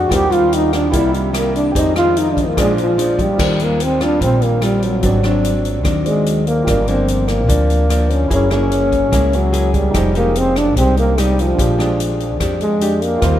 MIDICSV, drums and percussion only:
0, 0, Header, 1, 2, 480
1, 0, Start_track
1, 0, Key_signature, -3, "major"
1, 0, Tempo, 409556
1, 131, Time_signature, 4, 2, 24, 8
1, 15699, End_track
2, 0, Start_track
2, 0, Title_t, "Drums"
2, 130, Note_on_c, 9, 36, 58
2, 133, Note_on_c, 9, 37, 63
2, 133, Note_on_c, 9, 42, 47
2, 248, Note_off_c, 9, 36, 0
2, 251, Note_off_c, 9, 37, 0
2, 251, Note_off_c, 9, 42, 0
2, 376, Note_on_c, 9, 42, 27
2, 493, Note_off_c, 9, 42, 0
2, 615, Note_on_c, 9, 42, 44
2, 732, Note_off_c, 9, 42, 0
2, 856, Note_on_c, 9, 37, 61
2, 856, Note_on_c, 9, 42, 29
2, 973, Note_off_c, 9, 37, 0
2, 973, Note_off_c, 9, 42, 0
2, 1092, Note_on_c, 9, 36, 57
2, 1093, Note_on_c, 9, 42, 46
2, 1209, Note_off_c, 9, 36, 0
2, 1211, Note_off_c, 9, 42, 0
2, 1339, Note_on_c, 9, 42, 28
2, 1456, Note_off_c, 9, 42, 0
2, 1573, Note_on_c, 9, 37, 61
2, 1573, Note_on_c, 9, 42, 44
2, 1690, Note_off_c, 9, 37, 0
2, 1690, Note_off_c, 9, 42, 0
2, 1823, Note_on_c, 9, 42, 26
2, 1940, Note_off_c, 9, 42, 0
2, 2055, Note_on_c, 9, 36, 64
2, 2060, Note_on_c, 9, 42, 46
2, 2172, Note_off_c, 9, 36, 0
2, 2177, Note_off_c, 9, 42, 0
2, 2295, Note_on_c, 9, 37, 61
2, 2295, Note_on_c, 9, 42, 26
2, 2412, Note_off_c, 9, 37, 0
2, 2412, Note_off_c, 9, 42, 0
2, 2537, Note_on_c, 9, 42, 44
2, 2654, Note_off_c, 9, 42, 0
2, 2776, Note_on_c, 9, 36, 52
2, 2782, Note_on_c, 9, 42, 26
2, 2893, Note_off_c, 9, 36, 0
2, 2900, Note_off_c, 9, 42, 0
2, 3015, Note_on_c, 9, 36, 62
2, 3018, Note_on_c, 9, 37, 62
2, 3018, Note_on_c, 9, 42, 41
2, 3133, Note_off_c, 9, 36, 0
2, 3135, Note_off_c, 9, 37, 0
2, 3135, Note_off_c, 9, 42, 0
2, 3258, Note_on_c, 9, 42, 25
2, 3375, Note_off_c, 9, 42, 0
2, 3501, Note_on_c, 9, 42, 44
2, 3619, Note_off_c, 9, 42, 0
2, 3736, Note_on_c, 9, 36, 54
2, 3738, Note_on_c, 9, 42, 27
2, 3853, Note_off_c, 9, 36, 0
2, 3855, Note_off_c, 9, 42, 0
2, 3975, Note_on_c, 9, 36, 59
2, 3977, Note_on_c, 9, 37, 59
2, 3977, Note_on_c, 9, 49, 66
2, 4092, Note_off_c, 9, 36, 0
2, 4094, Note_off_c, 9, 37, 0
2, 4094, Note_off_c, 9, 49, 0
2, 4213, Note_on_c, 9, 42, 28
2, 4330, Note_off_c, 9, 42, 0
2, 4453, Note_on_c, 9, 42, 43
2, 4570, Note_off_c, 9, 42, 0
2, 4696, Note_on_c, 9, 37, 57
2, 4696, Note_on_c, 9, 42, 26
2, 4813, Note_off_c, 9, 37, 0
2, 4813, Note_off_c, 9, 42, 0
2, 4936, Note_on_c, 9, 36, 56
2, 4940, Note_on_c, 9, 42, 42
2, 5053, Note_off_c, 9, 36, 0
2, 5057, Note_off_c, 9, 42, 0
2, 5175, Note_on_c, 9, 42, 25
2, 5293, Note_off_c, 9, 42, 0
2, 5411, Note_on_c, 9, 37, 55
2, 5411, Note_on_c, 9, 42, 41
2, 5528, Note_off_c, 9, 37, 0
2, 5528, Note_off_c, 9, 42, 0
2, 5654, Note_on_c, 9, 42, 25
2, 5771, Note_off_c, 9, 42, 0
2, 5890, Note_on_c, 9, 42, 41
2, 5894, Note_on_c, 9, 36, 55
2, 6007, Note_off_c, 9, 42, 0
2, 6011, Note_off_c, 9, 36, 0
2, 6137, Note_on_c, 9, 37, 57
2, 6137, Note_on_c, 9, 42, 24
2, 6254, Note_off_c, 9, 37, 0
2, 6254, Note_off_c, 9, 42, 0
2, 6381, Note_on_c, 9, 42, 42
2, 6498, Note_off_c, 9, 42, 0
2, 6620, Note_on_c, 9, 42, 26
2, 6737, Note_off_c, 9, 42, 0
2, 6852, Note_on_c, 9, 37, 58
2, 6852, Note_on_c, 9, 42, 38
2, 6856, Note_on_c, 9, 36, 59
2, 6969, Note_off_c, 9, 37, 0
2, 6969, Note_off_c, 9, 42, 0
2, 6973, Note_off_c, 9, 36, 0
2, 7098, Note_on_c, 9, 42, 25
2, 7216, Note_off_c, 9, 42, 0
2, 7340, Note_on_c, 9, 42, 42
2, 7457, Note_off_c, 9, 42, 0
2, 7581, Note_on_c, 9, 42, 25
2, 7698, Note_off_c, 9, 42, 0
2, 7819, Note_on_c, 9, 36, 60
2, 7823, Note_on_c, 9, 37, 57
2, 7823, Note_on_c, 9, 42, 45
2, 7936, Note_off_c, 9, 36, 0
2, 7940, Note_off_c, 9, 37, 0
2, 7940, Note_off_c, 9, 42, 0
2, 8058, Note_on_c, 9, 42, 27
2, 8175, Note_off_c, 9, 42, 0
2, 8300, Note_on_c, 9, 42, 44
2, 8418, Note_off_c, 9, 42, 0
2, 8534, Note_on_c, 9, 37, 57
2, 8534, Note_on_c, 9, 42, 28
2, 8651, Note_off_c, 9, 37, 0
2, 8651, Note_off_c, 9, 42, 0
2, 8778, Note_on_c, 9, 36, 60
2, 8781, Note_on_c, 9, 42, 44
2, 8895, Note_off_c, 9, 36, 0
2, 8899, Note_off_c, 9, 42, 0
2, 9022, Note_on_c, 9, 42, 28
2, 9139, Note_off_c, 9, 42, 0
2, 9260, Note_on_c, 9, 37, 55
2, 9260, Note_on_c, 9, 42, 43
2, 9377, Note_off_c, 9, 37, 0
2, 9377, Note_off_c, 9, 42, 0
2, 9497, Note_on_c, 9, 42, 27
2, 9614, Note_off_c, 9, 42, 0
2, 9735, Note_on_c, 9, 36, 59
2, 9738, Note_on_c, 9, 42, 42
2, 9852, Note_off_c, 9, 36, 0
2, 9855, Note_off_c, 9, 42, 0
2, 9971, Note_on_c, 9, 37, 57
2, 9971, Note_on_c, 9, 42, 26
2, 10088, Note_off_c, 9, 37, 0
2, 10088, Note_off_c, 9, 42, 0
2, 10214, Note_on_c, 9, 42, 38
2, 10331, Note_off_c, 9, 42, 0
2, 10455, Note_on_c, 9, 36, 52
2, 10457, Note_on_c, 9, 42, 26
2, 10572, Note_off_c, 9, 36, 0
2, 10574, Note_off_c, 9, 42, 0
2, 10694, Note_on_c, 9, 37, 56
2, 10694, Note_on_c, 9, 42, 41
2, 10695, Note_on_c, 9, 36, 59
2, 10811, Note_off_c, 9, 37, 0
2, 10811, Note_off_c, 9, 42, 0
2, 10812, Note_off_c, 9, 36, 0
2, 10936, Note_on_c, 9, 42, 24
2, 11053, Note_off_c, 9, 42, 0
2, 11174, Note_on_c, 9, 42, 40
2, 11291, Note_off_c, 9, 42, 0
2, 11414, Note_on_c, 9, 42, 25
2, 11415, Note_on_c, 9, 36, 52
2, 11531, Note_off_c, 9, 42, 0
2, 11532, Note_off_c, 9, 36, 0
2, 11653, Note_on_c, 9, 37, 60
2, 11653, Note_on_c, 9, 42, 44
2, 11655, Note_on_c, 9, 36, 58
2, 11770, Note_off_c, 9, 37, 0
2, 11770, Note_off_c, 9, 42, 0
2, 11773, Note_off_c, 9, 36, 0
2, 11896, Note_on_c, 9, 42, 26
2, 12013, Note_off_c, 9, 42, 0
2, 12135, Note_on_c, 9, 42, 43
2, 12252, Note_off_c, 9, 42, 0
2, 12376, Note_on_c, 9, 37, 59
2, 12376, Note_on_c, 9, 42, 26
2, 12494, Note_off_c, 9, 37, 0
2, 12494, Note_off_c, 9, 42, 0
2, 12617, Note_on_c, 9, 36, 58
2, 12618, Note_on_c, 9, 42, 43
2, 12734, Note_off_c, 9, 36, 0
2, 12736, Note_off_c, 9, 42, 0
2, 12858, Note_on_c, 9, 42, 27
2, 12975, Note_off_c, 9, 42, 0
2, 13102, Note_on_c, 9, 37, 54
2, 13102, Note_on_c, 9, 42, 42
2, 13219, Note_off_c, 9, 37, 0
2, 13219, Note_off_c, 9, 42, 0
2, 13347, Note_on_c, 9, 42, 27
2, 13464, Note_off_c, 9, 42, 0
2, 13579, Note_on_c, 9, 36, 62
2, 13584, Note_on_c, 9, 42, 44
2, 13697, Note_off_c, 9, 36, 0
2, 13701, Note_off_c, 9, 42, 0
2, 13828, Note_on_c, 9, 37, 57
2, 13828, Note_on_c, 9, 42, 27
2, 13945, Note_off_c, 9, 37, 0
2, 13945, Note_off_c, 9, 42, 0
2, 14063, Note_on_c, 9, 42, 43
2, 14180, Note_off_c, 9, 42, 0
2, 14301, Note_on_c, 9, 42, 26
2, 14418, Note_off_c, 9, 42, 0
2, 14537, Note_on_c, 9, 36, 58
2, 14537, Note_on_c, 9, 37, 58
2, 14537, Note_on_c, 9, 42, 41
2, 14654, Note_off_c, 9, 36, 0
2, 14654, Note_off_c, 9, 37, 0
2, 14654, Note_off_c, 9, 42, 0
2, 14773, Note_on_c, 9, 42, 26
2, 14890, Note_off_c, 9, 42, 0
2, 15015, Note_on_c, 9, 42, 40
2, 15133, Note_off_c, 9, 42, 0
2, 15258, Note_on_c, 9, 42, 26
2, 15375, Note_off_c, 9, 42, 0
2, 15493, Note_on_c, 9, 37, 59
2, 15493, Note_on_c, 9, 42, 41
2, 15494, Note_on_c, 9, 36, 61
2, 15610, Note_off_c, 9, 37, 0
2, 15610, Note_off_c, 9, 42, 0
2, 15611, Note_off_c, 9, 36, 0
2, 15699, End_track
0, 0, End_of_file